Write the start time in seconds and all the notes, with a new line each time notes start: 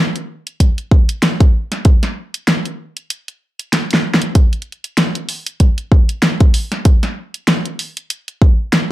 0.16 closed hi-hat
0.47 closed hi-hat
0.60 kick, closed hi-hat
0.78 closed hi-hat
0.91 kick
1.09 closed hi-hat
1.23 snare, closed hi-hat
1.40 kick, closed hi-hat
1.72 snare, closed hi-hat
1.85 kick, closed hi-hat
2.03 snare, closed hi-hat
2.34 closed hi-hat
2.48 snare, closed hi-hat
2.66 closed hi-hat
2.97 closed hi-hat
3.10 closed hi-hat
3.28 closed hi-hat
3.59 closed hi-hat
3.73 snare, closed hi-hat
3.91 snare, closed hi-hat
4.14 snare
4.22 closed hi-hat
4.35 kick, closed hi-hat
4.53 closed hi-hat
4.62 closed hi-hat
4.72 closed hi-hat
4.84 closed hi-hat
4.98 snare, closed hi-hat
5.15 closed hi-hat
5.29 open hi-hat
5.46 closed hi-hat
5.60 kick, closed hi-hat
5.78 closed hi-hat
5.92 kick
6.09 closed hi-hat
6.23 snare, closed hi-hat
6.40 kick, closed hi-hat
6.54 open hi-hat
6.72 snare, closed hi-hat
6.85 kick, closed hi-hat
7.03 snare, closed hi-hat
7.34 closed hi-hat
7.48 snare, closed hi-hat
7.65 closed hi-hat
7.79 open hi-hat
7.97 closed hi-hat
8.10 closed hi-hat
8.28 closed hi-hat
8.42 kick
8.73 snare, closed hi-hat